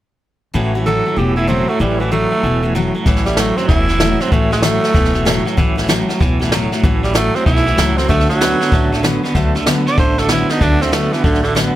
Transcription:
0.54 A1 A2 E3 F#3 A3 C#4 F#4
0.75 A2 E3 F#3 A3 C#4 F#4
0.86 A2 E3 F#3 A3 C#4 F#4 A4
1.06 A2 F#3 A3 C#4 F#4
1.16 E1 A2 E3 F#3 A3 C#4 F#4 G4
1.36 A2 E3 F#3 A3 C#4 E4 F#4
1.47 A2 E3 F#3 A3 C4 C#4 F#4
1.68 A2 F#3 A3 C#4 F#4
1.79 A1 A2 E3 F#3 G3 A3 C#4 F#4
2.00 A2 E3 F#3 A3 C#4 F#4
2.11 A2 E3 F#3 A3 C#4 F#4
2.31 A2 F#3 A3 C#4 F#4
2.43 E1 A2 E3 F#3 A3 C#4 F#4
2.63 A2 E3 F#3 A3 C#4 F#4
2.75 A2 E3 F#3 A3 C#4 F#4
2.95 A2 F#3 A3 C#4 F#4
3.06 A1 A2 E3 F#3 A3 C#4 F#4, kick, snare
3.16 snare
3.25 A2 E3 F#3 G3 A3 C#4 F#4, snare
3.37 A2 E3 F#3 A3 C#4 F#4, snare, hi-hat pedal
3.56 A2 F#3 A3 C4 C#4 F#4, snare
3.61 F#3
3.68 E1 A2 E3 F#3 A3 C#4 E4 F#4, kick, snare
3.88 A2 E3 F#3 A3 C#4 F#4, snare
4.00 A2 E3 F#3 A3 C#4 F#4, snare, hi-hat pedal
4.20 A2 F#3 A3 C4 C#4 F#4, snare
4.32 A1 A2 E3 F#3 A3 C#4 F#4, kick, snare
4.51 A2 E3 F#3 A3 C#4 F#4, snare
4.63 A2 E3 F#3 A3 C#4 F#4, snare, hi-hat pedal
4.83 A2 F#3 A3 C#4 F#4, snare
4.93 E1 A2 E3 F#3 A3 C#4 F#4, kick, snare
5.05 snare
5.13 A2 E3 F#3 A3 C#4 F#4, snare
5.25 A2 E3 F#3 A3 C#4 F#4, snare, hi-hat pedal
5.45 A2 F#3 A3 C#4 F#4, snare
5.57 A1 A2 E3 F#3 A3 C#4 F#4, kick, snare
5.76 A2 E3 F#3 A3 C#4 F#4, snare
5.88 A2 E3 F#3 A3 C#4 F#4, snare, hi-hat pedal
6.08 A2 F#3 A3 C#4 F#4, snare
6.20 E1 A2 E3 F#3 A3 C#4 F#4, kick, snare
6.40 A2 E3 F#3 A3 C#4 F#4, snare
6.52 A2 E3 F#3 A3 C#4 F#4, snare, hi-hat pedal
6.72 A2 F#3 A3 C#4 F#4, snare
6.83 A1 A2 E3 F#3 A3 C#4 F#4, kick, snare
7.03 A2 E3 F#3 G3 A3 C#4 F#4, snare
7.14 A2 E3 F#3 A3 C#4 F#4, snare, hi-hat pedal
7.34 A2 F#3 A3 C4 C#4 F#4, snare
7.46 B1 A2 E3 F#3 A3 C#4 E4 F#4, kick, snare
7.56 snare
7.66 A2 E3 F#3 A3 C#4 F#4, snare
7.78 C#2 A2 E3 F#3 A3 C#4 F#4, snare, hi-hat pedal
7.97 A2 F#3 A3 C4 C#4 F#4, snare
8.08 D2 D3 F#3 A3 B3 F#4 A4, kick, snare
8.20 snare
8.29 D3 F#3 A3 B3 F#4 A4, snare
8.41 D3 F#3 B3 F#4 A4, snare, hi-hat pedal
8.60 D3 B3 F#4 A4, snare
8.72 A1 D3 F#3 A3 B3 F#4 A4, kick, snare
8.92 D3 A3 B3 F#4 A4, snare
9.03 D3 F#3 B3 F#4 A4, snare, hi-hat pedal
9.23 D3 B3 F#4 A4, snare
9.35 D2 D3 F#3 A3 B3 F#4 A4, kick, snare
9.55 D3 A3 B3 F#4 A4, snare
9.66 D3 F#3 B3 F#4 A4, snare, hi-hat pedal
9.86 D3 B3 F#4 A4 D5, snare
9.90 B3
9.97 A1 D3 F#3 A3 B3 C5, kick, snare
10.01 F#4 A4
10.18 D3 A3 F#4 A4, snare
10.22 B3
10.29 D3 F#3 B3 E4 F#4 A4, snare, hi-hat pedal
10.49 D3 B3 D#4 F#4 A4, snare
10.54 B3
10.61 D2 D3 F#3 A3 B3 D4 F#4 A4, kick, snare
10.81 D3 A3 C4 F#4 A4, snare
10.92 D3 F#3 A3 B3 F#4 A4, snare, hi-hat pedal
11.12 D3 E3 B3 F#4 A4, snare
11.24 A1 D3 F#3 A3 B3 F#4 A4, kick, snare
11.34 snare
11.43 D3 A3 F#4 A4, snare
11.47 B3
11.55 D3 F#3 B3 F#4 A4, snare, hi-hat pedal

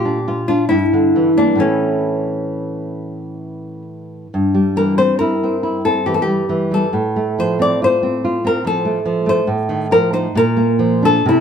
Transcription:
Already playing: A#2 F4 G4
0.05 D4
0.28 F4
0.48 D4 F4
0.69 G2 E4
0.93 D3
1.16 E3
1.37 A#3 D4
1.55 A2 E3 A3
1.60 C#4
4.34 G2
4.54 G3
4.76 E3 A#4
4.98 C4 C5
5.19 E4 A#4
5.43 C4
5.63 E4
5.85 C4 A4
6.06 E3 G4
6.14 A4
6.22 G4
6.27 G3
6.49 E3
6.71 G3 A4
6.93 A2
7.16 A3
7.39 F3 C5
7.59 C4 D5
7.82 F4 C5
8.03 C4
8.25 F4
8.45 C4 A#4
8.65 F3 A4
8.85 A3
9.05 F3
9.26 A3 C5
9.47 A2
9.69 D#3
9.91 F3 A#4
10.13 D#4 C5
10.35 A#2 A#4
10.57 A#3
10.79 F3
11.03 D4 A4
11.26 C3 E4

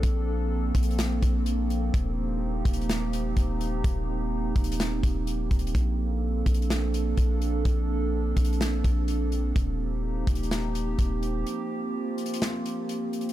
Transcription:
Already playing: F3 A#3 C4 D4 A4
0.03 A#1, kick, closed hi-hat
0.75 A#1, kick, closed hi-hat, open hi-hat
0.83 closed hi-hat
0.91 closed hi-hat
0.99 snare, closed hi-hat
1.23 A#1, kick, closed hi-hat
1.46 closed hi-hat
1.70 closed hi-hat
1.94 D#1 D#4 G4, kick, closed hi-hat
2.65 D#1, kick, closed hi-hat
2.73 closed hi-hat
2.81 closed hi-hat
2.89 snare, closed hi-hat
3.13 closed hi-hat
3.37 D#1, kick, closed hi-hat
3.61 closed hi-hat
3.84 D#1, kick, closed hi-hat
4.56 D#1, kick, closed hi-hat
4.64 closed hi-hat
4.72 closed hi-hat
4.80 snare, closed hi-hat
5.03 D#1, kick, closed hi-hat
5.27 closed hi-hat
5.51 D#1, kick, closed hi-hat
5.59 closed hi-hat
5.67 closed hi-hat
5.75 A#1 F3 D4 A4, kick, closed hi-hat
6.46 A#1, kick, closed hi-hat
6.54 closed hi-hat
6.62 closed hi-hat
6.70 snare, closed hi-hat
6.94 closed hi-hat
7.17 A#1, kick, closed hi-hat
7.42 closed hi-hat
7.65 A#1, kick, closed hi-hat
8.36 A#1, kick, closed hi-hat, open hi-hat
8.45 closed hi-hat
8.53 closed hi-hat
8.61 snare, closed hi-hat
8.84 A#1, kick, closed hi-hat
9.08 closed hi-hat
9.32 closed hi-hat
9.56 D#1 A#3 C4 D#4 G4, kick, closed hi-hat
10.27 D#1, kick, closed hi-hat
10.35 closed hi-hat
10.43 closed hi-hat
10.51 snare, closed hi-hat
10.75 closed hi-hat
10.99 D#1, kick, closed hi-hat
11.23 closed hi-hat
11.47 F4, closed hi-hat
12.18 closed hi-hat, open hi-hat
12.26 closed hi-hat
12.34 closed hi-hat
12.42 snare, closed hi-hat
12.66 closed hi-hat
12.89 closed hi-hat
13.13 closed hi-hat
13.21 closed hi-hat
13.29 closed hi-hat

